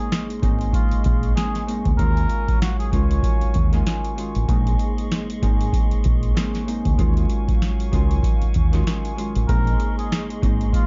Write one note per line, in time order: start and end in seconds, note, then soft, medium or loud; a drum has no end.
0.00 0.41 C#3 medium
0.00 0.41 G#3 medium
0.00 0.43 A#3 medium
0.00 0.43 C4 medium
0.00 0.44 D#4 loud
0.00 0.26 G#4 medium
0.00 1.97 G#4 medium
0.00 1.97 D#5 medium
0.00 1.97 C6 medium
0.00 4.45 C#6 medium
0.12 snare loud
0.12 closed hi-hat medium
0.30 closed hi-hat medium
0.42 0.68 G#1 medium
0.42 1.33 C#3 medium
0.42 1.34 G#3 medium
0.42 1.35 A#3 medium
0.42 1.36 C4 medium
0.42 1.36 D#4 loud
0.42 kick medium
0.42 closed hi-hat medium
0.61 closed hi-hat medium
0.73 1.01 F4 medium
0.73 kick medium
0.73 closed hi-hat loud
0.91 muted fingered electric bass stroke soft
0.91 closed hi-hat medium
1.04 1.31 A#1 medium
1.04 1.33 F4 medium
1.04 kick medium
1.04 closed hi-hat medium
1.23 closed hi-hat medium
1.34 1.65 C#3 medium
1.34 1.65 G#3 medium
1.34 1.65 A#3 medium
1.34 1.65 C4 medium
1.34 1.65 D#4 loud
1.34 1.64 G#4 medium
1.34 snare loud
1.34 closed hi-hat loud
1.55 snare soft
1.55 closed hi-hat medium
1.66 2.04 C#3 medium
1.66 1.98 G#3 medium
1.66 1.96 A#3 medium
1.66 1.97 C4 medium
1.66 1.97 D#4 medium
1.66 closed hi-hat medium
1.85 1.96 D2 loud
1.85 kick medium
1.85 closed hi-hat soft
1.98 2.24 D#2 loud
1.98 2.90 D#3 medium
1.98 2.91 F#3 medium
1.98 4.47 F#3 medium
1.98 2.91 G#3 medium
1.98 2.93 C#4 medium
1.98 2.93 F4 loud
1.98 2.57 A#4 loud
1.98 4.47 F5 medium
1.98 4.47 G#5 medium
1.98 kick loud
1.98 closed hi-hat medium
2.17 closed hi-hat medium
2.29 closed hi-hat medium
2.48 kick medium
2.48 closed hi-hat soft
2.61 2.78 F#4 medium
2.61 snare loud
2.61 closed hi-hat medium
2.79 2.91 G#4 medium
2.79 closed hi-hat medium
2.91 3.18 C#2 medium
2.91 3.71 D#3 medium
2.91 3.72 F#3 medium
2.91 3.72 G#3 medium
2.91 3.51 C#4 medium
2.91 3.51 F4 loud
2.91 3.82 C#5 medium
2.91 kick medium
2.91 closed hi-hat medium
3.11 closed hi-hat medium
3.23 kick medium
3.23 closed hi-hat loud
3.41 muted fingered electric bass stroke soft
3.41 closed hi-hat medium
3.54 3.81 D#2 medium
3.54 kick loud
3.54 closed hi-hat medium
3.72 3.85 D#3 loud
3.72 3.86 F#3 medium
3.72 3.86 G#3 medium
3.72 3.87 C#4 medium
3.72 3.87 F4 loud
3.72 snare soft
3.72 closed hi-hat medium
3.87 4.14 D#3 medium
3.87 4.15 F#3 medium
3.87 4.16 G#3 medium
3.87 4.16 C#4 medium
3.87 4.16 F4 medium
3.87 snare loud
3.87 closed hi-hat medium
4.05 closed hi-hat medium
4.16 4.54 D#3 medium
4.16 4.54 F#3 medium
4.16 4.48 G#3 medium
4.16 4.46 C#4 medium
4.16 4.47 F4 medium
4.16 closed hi-hat medium
4.35 4.47 A1 medium
4.35 closed hi-hat soft
4.48 4.74 A#1 loud
4.48 5.41 C#3 medium
4.48 5.41 G#3 medium
4.48 5.43 A#3 medium
4.48 5.43 C4 medium
4.48 5.44 D#4 loud
4.48 6.96 G#4 medium
4.48 6.96 D#5 medium
4.48 6.96 C6 medium
4.48 6.96 C#6 medium
4.48 kick loud
4.48 closed hi-hat medium
4.67 closed hi-hat medium
4.79 closed hi-hat medium
4.98 closed hi-hat soft
5.12 snare loud
5.12 closed hi-hat medium
5.30 closed hi-hat medium
5.42 5.68 G#1 loud
5.42 6.33 C#3 medium
5.42 6.34 G#3 medium
5.42 6.35 A#3 medium
5.42 6.35 C4 medium
5.42 6.36 D#4 loud
5.42 kick medium
5.42 closed hi-hat medium
5.61 closed hi-hat medium
5.73 kick medium
5.73 closed hi-hat loud
5.91 muted fingered electric bass stroke soft
5.91 closed hi-hat medium
6.04 6.31 A#1 medium
6.04 kick loud
6.04 closed hi-hat medium
6.23 closed hi-hat medium
6.34 6.65 C#3 medium
6.34 6.65 G#3 medium
6.34 6.65 A#3 medium
6.34 6.65 C4 medium
6.34 6.65 D#4 loud
6.34 snare loud
6.34 closed hi-hat loud
6.55 snare soft
6.55 closed hi-hat medium
6.66 7.04 C#3 medium
6.66 6.97 G#3 medium
6.66 6.96 A#3 medium
6.66 6.97 C4 medium
6.66 6.97 D#4 medium
6.66 closed hi-hat medium
6.85 6.96 D2 medium
6.85 kick medium
6.85 closed hi-hat soft
6.97 7.24 D#2 loud
6.97 7.90 D#3 medium
6.97 7.91 F#3 medium
6.97 9.46 F#3 medium
6.97 7.91 G#3 medium
6.97 7.93 C#4 medium
6.97 7.93 F4 loud
6.97 9.46 F5 medium
6.97 9.46 G#5 medium
6.97 9.46 C#6 loud
6.97 kick loud
6.97 closed hi-hat medium
7.17 closed hi-hat medium
7.30 closed hi-hat medium
7.48 kick medium
7.48 closed hi-hat soft
7.62 snare loud
7.62 closed hi-hat medium
7.80 closed hi-hat medium
7.91 8.18 C#2 medium
7.91 8.71 D#3 medium
7.91 8.71 F#3 medium
7.91 8.72 G#3 medium
7.91 8.51 C#4 medium
7.91 8.51 F4 loud
7.91 kick medium
7.91 closed hi-hat medium
8.11 closed hi-hat medium
8.23 kick loud
8.23 closed hi-hat loud
8.42 muted fingered electric bass stroke soft
8.42 closed hi-hat medium
8.54 8.81 D#2 medium
8.54 kick medium
8.54 closed hi-hat medium
8.72 8.85 D#3 loud
8.72 8.86 F#3 medium
8.72 8.86 G#3 medium
8.72 8.87 C#4 medium
8.72 8.87 F4 loud
8.72 snare soft
8.72 closed hi-hat medium
8.86 9.14 D#3 medium
8.86 9.15 F#3 medium
8.86 9.15 G#3 medium
8.86 9.16 C#4 medium
8.86 9.17 F4 medium
8.86 snare loud
8.86 closed hi-hat medium
9.05 closed hi-hat medium
9.16 9.54 D#3 medium
9.16 9.54 F#3 medium
9.16 9.48 G#3 medium
9.16 9.46 C#4 medium
9.16 9.47 F4 loud
9.16 closed hi-hat medium
9.35 9.47 A1 medium
9.35 closed hi-hat soft
9.48 9.74 A#1 loud
9.48 10.40 C#3 medium
9.48 10.41 G#3 medium
9.48 10.42 A#3 medium
9.48 10.43 C4 medium
9.48 10.43 D#4 loud
9.48 10.87 G#4 medium
9.48 9.95 A#4 loud
9.48 10.87 D#5 medium
9.48 10.87 C6 medium
9.48 10.87 C#6 medium
9.48 kick loud
9.48 closed hi-hat medium
9.67 closed hi-hat medium
9.80 closed hi-hat medium
9.98 10.26 G#4 medium
9.98 closed hi-hat soft
10.12 snare loud
10.12 closed hi-hat loud
10.30 closed hi-hat medium
10.42 10.68 G#1 medium
10.42 10.87 C#3 medium
10.42 10.87 G#3 medium
10.42 10.87 A#3 medium
10.42 10.87 C4 medium
10.42 10.87 D#4 loud
10.42 kick medium
10.42 closed hi-hat medium
10.61 closed hi-hat medium
10.73 10.87 F4 medium
10.73 kick medium
10.73 closed hi-hat loud